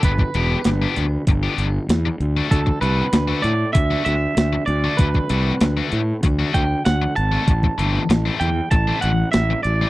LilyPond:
<<
  \new Staff \with { instrumentName = "Clean electric guitar" } { \time 4/4 \key d \mixolydian \tempo 4 = 97 b'2 r2 | a'8 b'4 d''8 e''8 e''4 d''8 | b'2 r8 g''8 fis''8 a''8~ | a''4. g''8 a''8 fis''8 e''8 d''8 | }
  \new Staff \with { instrumentName = "Distorted electric guitar" } { \time 4/4 \key d \mixolydian r8 <b d' g'>16 r8 <b d' g'>16 r8. <b d' g'>16 r4 r16 <a d' fis'>16 | r8 <a d' fis'>16 r8 <a d' fis'>16 r8. <a d' fis'>16 r4 r16 <a d' fis'>16 | r8 <a d' fis'>16 r8 <a d' fis'>16 r8. <a d' fis'>16 r4 r16 <a d' fis'>16 | r8 <e a c'>16 r8 <e a c'>16 r8. <e a c'>16 r4 r16 <e a c'>16 | }
  \new Staff \with { instrumentName = "Fingered electric bass" } { \clef bass \time 4/4 \key d \mixolydian g,,8 e,,8 g,,8 d,8 g,,8 g,,8 e,8 d,8 | d,8 c,8 d,8 a,8 d,8 d,8 d,8 d,8 | d,8 c,8 d,8 a,8 d,8 d,8 d,8 aes,,8 | a,,8 g,,8 a,,8 e,8 a,,8 a,,8 a,,8 a,,8 | }
  \new DrumStaff \with { instrumentName = "Drums" } \drummode { \time 4/4 <hh bd>16 bd16 hh8 <hh sn>8 hh8 <hh bd>8 hh8 <hh sn>8 hh8 | <hh bd>16 bd16 hh8 <hh sn>8 hh8 <hh bd>8 hh8 <hh sn>8 hh8 | <hh bd>16 bd16 hh8 <hh sn>8 hh8 <hh bd>8 <hh bd>8 <hh sn>8 hh8 | <hh bd>16 bd16 hh8 <hh sn>8 hh8 <hh bd>8 hh8 <hh sn>8 hh8 | }
>>